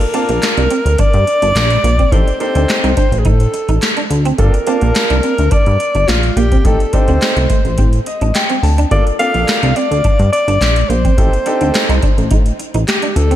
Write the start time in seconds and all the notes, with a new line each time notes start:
Already playing: A#4
0.01 muted clean electric guitar stroke, closed hi-hat
0.14 A#3 C4 D4 F4 A5, closed hi-hat
0.29 A#1 A#3, closed hi-hat
0.42 muted clean electric guitar stroke, snare, clap, closed hi-hat
0.57 C2 D4, closed hi-hat
0.70 C4, closed hi-hat
0.86 D2, closed hi-hat
0.98 G2 D4 D5, kick, closed hi-hat
1.14 G2, closed hi-hat
1.27 muted clean electric guitar stroke, closed hi-hat
1.42 G1 D4, closed hi-hat
1.56 A#1, muted clean electric guitar stroke, snare, clap, closed hi-hat
1.70 closed hi-hat
1.84 A#1 A#3, closed hi-hat
1.99 C4, kick, closed hi-hat
2.12 A1 C4 D#4 G4 A4 C5, kick, closed hi-hat
2.27 muted clean electric guitar stroke, closed hi-hat
2.40 A#3 D4 D#4 G4 A4 C5, closed hi-hat
2.47 C4
2.55 D2 C4, closed hi-hat
2.69 muted clean electric guitar stroke, snare, clap, closed hi-hat
2.84 C2 D#4, closed hi-hat
2.97 D4 C5, kick, closed hi-hat
3.12 A1, closed hi-hat
3.19 G#4
3.25 A2 D#4 A4, kick, closed hi-hat
3.40 closed hi-hat
3.54 muted clean electric guitar stroke, closed hi-hat
3.69 A1 D#4, closed hi-hat
3.82 snare, clap, closed hi-hat
3.97 D4, closed hi-hat
4.10 D2, muted clean electric guitar stroke, closed hi-hat
4.25 C4, closed hi-hat
4.38 G1 A#3 D4 F4 A4 A#4, kick, closed hi-hat
4.54 muted clean electric guitar stroke, closed hi-hat
4.67 A#3 C4 D4 F4 A5, closed hi-hat
4.81 A#1 A#3, closed hi-hat
4.95 muted clean electric guitar stroke, snare, clap, closed hi-hat
5.10 C2 D4, closed hi-hat
5.23 C4, closed hi-hat
5.38 D2, closed hi-hat
5.51 D4 D5, kick, closed hi-hat
5.66 G2, closed hi-hat
5.80 muted clean electric guitar stroke, closed hi-hat
5.95 G1 D4, closed hi-hat
6.08 A#1 F4, muted clean electric guitar stroke, snare, clap, closed hi-hat
6.23 closed hi-hat
6.36 A#1 A#3 G4, closed hi-hat
6.52 C4, kick, closed hi-hat
6.65 A1 C4 D#4 G4 A4, kick, closed hi-hat
6.80 muted clean electric guitar stroke, closed hi-hat
6.93 C4 D4 D#4 G4 A4 C5, kick, closed hi-hat
7.08 D2 C4, closed hi-hat
7.21 muted clean electric guitar stroke, snare, clap, closed hi-hat
7.36 C2 A3, closed hi-hat
7.50 A3, kick, closed hi-hat
7.65 A1, closed hi-hat
7.78 A2 C4, kick, closed hi-hat
7.93 closed hi-hat
8.06 D#5, muted clean electric guitar stroke, closed hi-hat
8.21 A1 D4, closed hi-hat
8.35 G5, snare, clap, closed hi-hat
8.50 C4, closed hi-hat
8.63 D2 A5, muted clean electric guitar stroke, open hi-hat
8.78 D4, closed hi-hat
8.91 G1 A#3 D4 F4 A4 D5, kick, closed hi-hat
9.07 muted clean electric guitar stroke, closed hi-hat
9.19 A#3 C4 D4 F4 A4 F5, closed hi-hat
9.34 A#1 A#3, closed hi-hat
9.48 muted clean electric guitar stroke, snare, clap, closed hi-hat
9.63 C2 D4, closed hi-hat
9.76 C4 D5, closed hi-hat
9.91 D2, closed hi-hat
10.04 G2 D4, kick, closed hi-hat
10.19 G2, closed hi-hat
10.33 D5, muted clean electric guitar stroke, closed hi-hat
10.48 G1 D4, closed hi-hat
10.61 A#1, muted clean electric guitar stroke, snare, clap, closed hi-hat
10.76 closed hi-hat
10.89 A#1 A#3 C5, closed hi-hat
11.05 C4, kick, closed hi-hat
11.17 A1 C4 D#4 G4 A4, kick, closed hi-hat
11.33 muted clean electric guitar stroke, closed hi-hat
11.46 C4 D4 D#4 G4 A4, closed hi-hat
11.61 D2 C4, closed hi-hat
11.74 muted clean electric guitar stroke, snare, clap, closed hi-hat
11.89 C2 D#4, closed hi-hat
12.03 D4, kick, closed hi-hat
12.18 A1, closed hi-hat
12.31 A2 D#4, kick, closed hi-hat
12.46 closed hi-hat
12.59 muted clean electric guitar stroke, closed hi-hat
12.74 A1 D#4, closed hi-hat
12.88 G4, snare, clap, closed hi-hat
13.02 D4, closed hi-hat
13.16 D2 A4, muted clean electric guitar stroke, closed hi-hat
13.31 C4, closed hi-hat